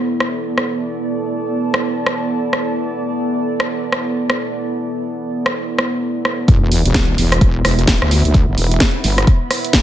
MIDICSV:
0, 0, Header, 1, 6, 480
1, 0, Start_track
1, 0, Tempo, 465116
1, 929, Time_signature, 4, 2, 24, 8
1, 10136, End_track
2, 0, Start_track
2, 0, Title_t, "Ambient pad"
2, 0, Program_c, 0, 92
2, 0, Note_on_c, 0, 59, 84
2, 0, Note_on_c, 0, 64, 64
2, 0, Note_on_c, 0, 74, 83
2, 0, Note_on_c, 0, 83, 65
2, 560, Note_on_c, 0, 81, 71
2, 689, Note_off_c, 0, 83, 0
2, 6689, Note_off_c, 0, 81, 0
2, 7174, Note_on_c, 0, 76, 90
2, 8351, Note_on_c, 0, 83, 75
2, 8419, Note_off_c, 0, 74, 0
2, 10136, Note_off_c, 0, 59, 0
2, 10136, Note_off_c, 0, 64, 0
2, 10136, Note_off_c, 0, 76, 0
2, 10136, Note_off_c, 0, 83, 0
2, 10136, End_track
3, 0, Start_track
3, 0, Title_t, "Analog synth pad"
3, 0, Program_c, 1, 89
3, 0, Note_on_c, 1, 59, 78
3, 0, Note_on_c, 1, 64, 71
3, 0, Note_on_c, 1, 69, 89
3, 6648, Note_off_c, 1, 59, 0
3, 6648, Note_off_c, 1, 64, 0
3, 6648, Note_off_c, 1, 69, 0
3, 6688, Note_on_c, 1, 64, 78
3, 6688, Note_on_c, 1, 71, 91
3, 6689, Note_on_c, 1, 59, 85
3, 10136, Note_off_c, 1, 59, 0
3, 10136, Note_off_c, 1, 64, 0
3, 10136, Note_off_c, 1, 71, 0
3, 10136, End_track
4, 0, Start_track
4, 0, Title_t, "Wobble bass"
4, 0, Program_c, 2, 39
4, 6689, Note_on_c, 2, 28, 95
4, 7050, Note_off_c, 2, 28, 0
4, 7072, Note_on_c, 2, 28, 95
4, 7393, Note_off_c, 2, 28, 0
4, 7409, Note_on_c, 2, 28, 98
4, 7874, Note_off_c, 2, 28, 0
4, 7890, Note_on_c, 2, 28, 97
4, 8114, Note_off_c, 2, 28, 0
4, 8130, Note_on_c, 2, 28, 96
4, 8250, Note_off_c, 2, 28, 0
4, 8274, Note_on_c, 2, 38, 102
4, 8491, Note_off_c, 2, 38, 0
4, 8514, Note_on_c, 2, 38, 97
4, 8731, Note_off_c, 2, 38, 0
4, 8755, Note_on_c, 2, 31, 101
4, 8835, Note_off_c, 2, 31, 0
4, 8851, Note_on_c, 2, 28, 96
4, 9075, Note_off_c, 2, 28, 0
4, 9331, Note_on_c, 2, 31, 98
4, 9555, Note_off_c, 2, 31, 0
4, 10136, End_track
5, 0, Start_track
5, 0, Title_t, "Sub drop"
5, 0, Program_c, 3, 103
5, 6689, Note_on_c, 3, 60, 75
5, 8609, Note_off_c, 3, 60, 0
5, 10136, End_track
6, 0, Start_track
6, 0, Title_t, "Drums"
6, 211, Note_on_c, 9, 37, 61
6, 314, Note_off_c, 9, 37, 0
6, 594, Note_on_c, 9, 37, 61
6, 697, Note_off_c, 9, 37, 0
6, 1795, Note_on_c, 9, 37, 67
6, 1898, Note_off_c, 9, 37, 0
6, 2131, Note_on_c, 9, 37, 65
6, 2234, Note_off_c, 9, 37, 0
6, 2611, Note_on_c, 9, 37, 60
6, 2714, Note_off_c, 9, 37, 0
6, 3714, Note_on_c, 9, 37, 67
6, 3818, Note_off_c, 9, 37, 0
6, 4050, Note_on_c, 9, 37, 68
6, 4153, Note_off_c, 9, 37, 0
6, 4433, Note_on_c, 9, 37, 65
6, 4537, Note_off_c, 9, 37, 0
6, 5634, Note_on_c, 9, 37, 68
6, 5737, Note_off_c, 9, 37, 0
6, 5970, Note_on_c, 9, 37, 64
6, 6073, Note_off_c, 9, 37, 0
6, 6451, Note_on_c, 9, 37, 60
6, 6554, Note_off_c, 9, 37, 0
6, 6689, Note_on_c, 9, 36, 116
6, 6691, Note_on_c, 9, 42, 56
6, 6792, Note_off_c, 9, 36, 0
6, 6794, Note_off_c, 9, 42, 0
6, 6931, Note_on_c, 9, 46, 106
6, 7034, Note_off_c, 9, 46, 0
6, 7075, Note_on_c, 9, 42, 70
6, 7166, Note_on_c, 9, 38, 127
6, 7169, Note_on_c, 9, 36, 109
6, 7172, Note_off_c, 9, 42, 0
6, 7172, Note_on_c, 9, 42, 55
6, 7269, Note_off_c, 9, 38, 0
6, 7273, Note_off_c, 9, 36, 0
6, 7275, Note_off_c, 9, 42, 0
6, 7411, Note_on_c, 9, 46, 107
6, 7514, Note_off_c, 9, 46, 0
6, 7555, Note_on_c, 9, 37, 69
6, 7555, Note_on_c, 9, 42, 73
6, 7650, Note_on_c, 9, 36, 127
6, 7652, Note_off_c, 9, 42, 0
6, 7652, Note_on_c, 9, 42, 54
6, 7659, Note_off_c, 9, 37, 0
6, 7753, Note_off_c, 9, 36, 0
6, 7755, Note_off_c, 9, 42, 0
6, 7892, Note_on_c, 9, 37, 68
6, 7892, Note_on_c, 9, 46, 104
6, 7996, Note_off_c, 9, 37, 0
6, 7996, Note_off_c, 9, 46, 0
6, 8036, Note_on_c, 9, 42, 67
6, 8127, Note_on_c, 9, 38, 122
6, 8130, Note_on_c, 9, 36, 104
6, 8133, Note_off_c, 9, 42, 0
6, 8133, Note_on_c, 9, 42, 54
6, 8230, Note_off_c, 9, 38, 0
6, 8233, Note_off_c, 9, 36, 0
6, 8236, Note_off_c, 9, 42, 0
6, 8276, Note_on_c, 9, 37, 70
6, 8372, Note_on_c, 9, 46, 105
6, 8380, Note_off_c, 9, 37, 0
6, 8475, Note_off_c, 9, 46, 0
6, 8515, Note_on_c, 9, 42, 72
6, 8610, Note_on_c, 9, 36, 121
6, 8611, Note_off_c, 9, 42, 0
6, 8611, Note_on_c, 9, 42, 55
6, 8713, Note_off_c, 9, 36, 0
6, 8715, Note_off_c, 9, 42, 0
6, 8851, Note_on_c, 9, 46, 104
6, 8954, Note_off_c, 9, 46, 0
6, 8994, Note_on_c, 9, 42, 67
6, 9084, Note_on_c, 9, 38, 127
6, 9090, Note_off_c, 9, 42, 0
6, 9090, Note_on_c, 9, 36, 116
6, 9090, Note_on_c, 9, 42, 55
6, 9187, Note_off_c, 9, 38, 0
6, 9193, Note_off_c, 9, 36, 0
6, 9193, Note_off_c, 9, 42, 0
6, 9329, Note_on_c, 9, 46, 110
6, 9432, Note_off_c, 9, 46, 0
6, 9474, Note_on_c, 9, 37, 67
6, 9474, Note_on_c, 9, 42, 70
6, 9570, Note_off_c, 9, 42, 0
6, 9570, Note_on_c, 9, 36, 125
6, 9570, Note_on_c, 9, 42, 53
6, 9577, Note_off_c, 9, 37, 0
6, 9673, Note_off_c, 9, 36, 0
6, 9673, Note_off_c, 9, 42, 0
6, 9810, Note_on_c, 9, 37, 62
6, 9810, Note_on_c, 9, 46, 113
6, 9913, Note_off_c, 9, 37, 0
6, 9913, Note_off_c, 9, 46, 0
6, 9954, Note_on_c, 9, 42, 65
6, 10044, Note_on_c, 9, 38, 123
6, 10050, Note_off_c, 9, 42, 0
6, 10050, Note_on_c, 9, 36, 105
6, 10050, Note_on_c, 9, 42, 51
6, 10136, Note_off_c, 9, 36, 0
6, 10136, Note_off_c, 9, 38, 0
6, 10136, Note_off_c, 9, 42, 0
6, 10136, End_track
0, 0, End_of_file